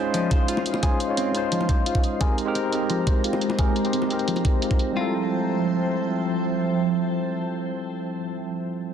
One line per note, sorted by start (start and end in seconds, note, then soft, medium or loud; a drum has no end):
0.00 0.82 G#3 medium
0.00 0.82 C#4 medium
0.00 0.83 D#4 medium
0.00 0.84 F4 medium
0.00 0.84 C5 loud
0.00 2.18 D#5 medium
0.00 2.18 F5 medium
0.00 2.18 C6 medium
0.14 0.30 F3 medium
0.14 closed hi-hat medium
0.31 0.47 C5 medium
0.31 kick loud
0.31 closed hi-hat medium
0.48 0.64 F4 medium
0.48 closed hi-hat medium
0.57 high bongo medium
0.66 closed hi-hat medium
0.74 high bongo medium
0.82 1.06 G#3 medium
0.82 1.06 C#4 medium
0.82 1.07 D#4 medium
0.82 1.07 F4 medium
0.82 0.98 G#4 medium
0.82 1.07 C5 medium
0.82 kick loud
0.82 closed hi-hat medium
1.00 closed hi-hat medium
1.08 1.31 G#3 medium
1.08 1.32 C#4 medium
1.08 1.33 D#4 medium
1.08 1.33 F4 medium
1.08 1.33 C#5 medium
1.17 1.33 C4 medium
1.17 closed hi-hat medium
1.32 2.17 G#3 medium
1.32 2.19 D#4 medium
1.32 closed hi-hat medium
1.36 2.19 F4 medium
1.36 2.20 C5 medium
1.52 1.68 F3 medium
1.52 closed hi-hat medium
1.61 high bongo soft
1.69 1.85 C5 medium
1.69 kick loud
1.69 closed hi-hat medium
1.86 2.02 F4 medium
1.86 closed hi-hat medium
1.95 kick medium
2.04 closed hi-hat medium
2.19 2.44 G#3 medium
2.19 4.94 G#3 medium
2.19 2.44 C4 medium
2.19 2.45 D#4 medium
2.19 2.45 G4 medium
2.19 2.36 G#4 medium
2.19 2.45 A#4 medium
2.19 4.94 C5 medium
2.19 4.94 G5 medium
2.19 4.94 A#5 medium
2.19 kick loud
2.19 closed hi-hat medium
2.38 closed hi-hat medium
2.45 2.54 G#3 medium
2.45 2.54 C4 medium
2.45 2.54 D#4 medium
2.45 2.55 G4 medium
2.45 2.55 A#4 loud
2.55 2.71 C4 medium
2.55 closed hi-hat medium
2.70 3.55 G#3 medium
2.70 3.56 C4 medium
2.70 3.57 D#4 medium
2.70 closed hi-hat medium
2.74 3.57 G4 medium
2.74 3.58 A#4 medium
2.90 3.06 F3 medium
2.90 closed hi-hat medium
3.07 3.22 C5 medium
3.07 kick medium
3.07 closed hi-hat medium
3.24 3.40 F4 medium
3.24 closed hi-hat medium
3.33 high bongo medium
3.41 closed hi-hat medium
3.50 high bongo medium
3.57 3.82 G#3 medium
3.57 3.82 C4 medium
3.57 3.82 D#4 medium
3.57 3.83 G4 medium
3.57 3.74 G#4 medium
3.57 3.83 A#4 medium
3.57 kick loud
3.57 closed hi-hat medium
3.76 closed hi-hat medium
3.83 4.06 G#3 medium
3.83 4.08 C4 medium
3.83 4.08 D#4 medium
3.83 4.09 G4 medium
3.83 4.09 C5 medium
3.83 closed hi-hat soft
3.93 4.09 C4 medium
3.93 closed hi-hat medium
4.02 high bongo medium
4.08 4.93 G#3 medium
4.08 4.93 C4 medium
4.08 4.95 D#4 medium
4.08 closed hi-hat medium
4.12 4.95 G4 medium
4.12 4.96 A#4 medium
4.19 closed hi-hat soft
4.28 4.44 F3 medium
4.28 closed hi-hat medium
4.36 closed hi-hat soft
4.36 high bongo soft
4.45 4.60 C5 medium
4.45 kick loud
4.45 closed hi-hat medium
4.62 4.78 F4 medium
4.62 closed hi-hat medium
4.71 kick medium
4.79 closed hi-hat medium
4.92 8.14 G3 medium
4.92 8.16 C4 medium
4.97 8.19 F3 medium
4.97 8.19 E4 medium
4.97 5.13 F4 medium
4.97 8.21 F4 medium
4.97 8.19 C5 medium
4.97 8.19 E5 medium
4.97 8.19 G5 medium
4.97 8.19 A5 medium
5.01 8.23 A4 medium